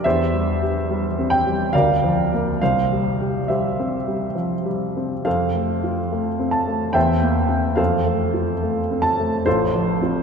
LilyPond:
<<
  \new Staff \with { instrumentName = "Upright piano" } { \time 3/4 \key f \major \tempo 4 = 71 <g' c'' e''>4. g''8 <bes' d'' f''>4 | <c'' f''>4 <g' c'' e''>4 r4 | <a' c'' f''>4. a''8 <c'' e'' g''>4 | <a' c'' f''>4. a''8 <f' a' c''>4 | }
  \new Staff \with { instrumentName = "Upright piano" } { \time 3/4 \key f \major \tuplet 3/2 { e,8 g8 g'8 g8 c'8 g8 d,8 f8 <bes bes'>8 } | \tuplet 3/2 { c,8 g8 g'8 g8 c'8 g8 f8 g8 c'8 } | \tuplet 3/2 { f,8 a8 f'8 a8 c'8 a8 e,8 bes8 c'8 } | \tuplet 3/2 { f,8 a8 f'8 a8 c'8 a8 a,,8 f8 <c' f'>8 } | }
>>